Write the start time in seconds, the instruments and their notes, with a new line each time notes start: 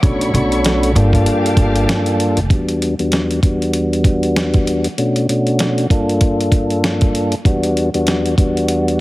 0.02 upright bass B1, tonewheel organ B2 A3 C#4 D4 F#4, string section A4 C#5 B5 C#6, kick, closed hi-hat
0.21 closed hi-hat
0.34 upright bass B1, tonewheel organ B2 A3 C#4 D4 F#4, closed hi-hat
0.52 closed hi-hat
0.65 snare, closed hi-hat
0.83 closed hi-hat
0.95 upright bass G1, tonewheel organ G2 A#3 D4 F4 A4, string section G4 F5 G5 A5, closed hi-hat
1.13 kick, closed hi-hat
1.26 closed hi-hat
1.46 closed hi-hat
1.57 upright bass G1, kick, closed hi-hat
1.76 closed hi-hat
1.89 snare, closed hi-hat
2.06 closed hi-hat
2.20 closed hi-hat
2.37 upright bass F1, closed hi-hat
2.50 tonewheel organ E2 G3 B3 D4 F#4, kick, closed hi-hat
2.69 closed hi-hat
2.82 closed hi-hat
2.99 tonewheel organ E2 G3 B3 D4 F#4, closed hi-hat
3.12 snare, closed hi-hat
3.31 closed hi-hat
3.43 tonewheel organ E2 G3 B3 D4 F#4, kick, closed hi-hat
3.62 closed hi-hat
3.73 closed hi-hat
3.93 closed hi-hat
4.04 kick, closed hi-hat
4.23 closed hi-hat
4.36 snare, closed hi-hat
4.54 kick, closed hi-hat
4.67 closed hi-hat
4.84 closed hi-hat
4.97 tonewheel organ B2 A3 C#4 D4 F#4, closed hi-hat
5.16 closed hi-hat
5.28 tonewheel organ B2 A3 C#4 D4 F#4, closed hi-hat
5.47 closed hi-hat
5.59 snare, closed hi-hat
5.78 closed hi-hat
5.89 tonewheel organ G2 A#3 D4 F4 A4, kick, closed hi-hat
6.09 closed hi-hat
6.21 kick, closed hi-hat
6.41 closed hi-hat
6.52 kick, closed hi-hat
6.70 closed hi-hat
6.84 snare, closed hi-hat
7.01 kick, closed hi-hat
7.15 closed hi-hat
7.32 closed hi-hat
7.44 tonewheel organ E2 G3 B3 D4 F#4, kick, closed hi-hat
7.63 closed hi-hat
7.77 closed hi-hat
7.94 tonewheel organ E2 G3 B3 D4 F#4, closed hi-hat
8.07 snare, closed hi-hat
8.26 closed hi-hat
8.38 tonewheel organ E2 G3 B3 D4 F#4, kick, closed hi-hat
8.57 closed hi-hat
8.68 closed hi-hat
8.88 closed hi-hat